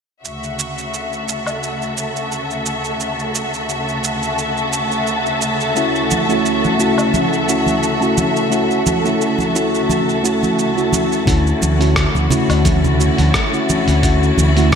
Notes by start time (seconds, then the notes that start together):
0.23 D2 C#3 F#4 A4 E5 A5, shaker
0.44 shaker
0.59 shaker
0.78 shaker
0.94 shaker
1.13 shaker
1.28 shaker
1.47 low woodblock, shaker
1.63 shaker
1.82 shaker
1.97 shaker
2.16 shaker
2.32 shaker
2.51 shaker
2.66 shaker
2.85 shaker
3.00 shaker
3.19 shaker
3.35 shaker
3.54 shaker
3.69 shaker
3.89 shaker
4.04 shaker
4.23 shaker
4.38 shaker
4.57 shaker
4.73 shaker
4.92 shaker
5.07 shaker
5.26 shaker
5.42 shaker
5.61 shaker
5.75 A3 C#4 E4 F#4, shaker
5.95 shaker
6.11 high conga, shaker
6.29 A3 C#4 E4 F#4, shaker
6.46 shaker
6.64 high conga, shaker
6.78 A3 C#4 E4 F#4, shaker
6.98 low woodblock, shaker
7.14 high conga, shaker
7.33 shaker
7.48 A3 C#4 E4 F#4, shaker
7.66 high conga, shaker
7.83 shaker
8.01 A3 C#4 E4 F#4, shaker
8.18 high conga, shaker
8.36 shaker
8.50 A3 C#4 E4 F#4, shaker
8.71 shaker
8.86 high conga, shaker
9.04 A3 C#4 E4 F#4, shaker
9.21 shaker
9.39 high conga, shaker
9.54 A3 C#4 E4 F#4, shaker
9.75 shaker
9.89 high conga, shaker
10.09 shaker
10.23 A3 C#4 E4 F#4, shaker
10.43 high conga, shaker
10.59 shaker
10.76 A3 C#4 E4 F#4, shaker
10.93 high conga, shaker
11.12 shaker
11.26 D2 D3 A3 C#4 E4 F#4 A6, kick, open hi-hat, shaker
11.47 shaker
11.62 D2, high conga, shaker
11.79 A3 C#4 E4 F#4, open hi-hat, shaker
11.96 kick, cross-stick, open hi-hat, shaker
12.15 D2, high conga, shaker
12.29 A3 C#4 E4 F#4, open hi-hat, low conga, shaker
12.49 D2, open hi-hat, low woodblock, shaker
12.65 kick, open hi-hat, high conga, shaker
12.84 low conga, shaker
12.99 A3 C#4 E4 F#4, shaker
13.18 D2, open hi-hat, high conga, shaker
13.34 kick, cross-stick, open hi-hat, shaker
13.52 A3 C#4 E4 F#4, shaker
13.69 high conga, shaker
13.87 D2, open hi-hat, shaker
14.02 A3 C#4 E4 F#4, kick, open hi-hat, shaker
14.23 shaker
14.38 D2, high conga, shaker
14.56 A3 C#4 E4 F#4, open hi-hat, shaker